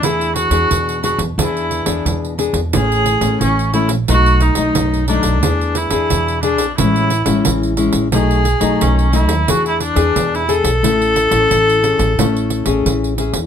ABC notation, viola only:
X:1
M:4/4
L:1/16
Q:1/4=89
K:A
V:1 name="Viola"
E2 F4 F2 E4 z4 | G4 C2 E2 F2 ^D4 =D2- | D2 E4 D2 E4 z4 | G4 C2 E2 F E D3 E A2- |
A12 z4 |]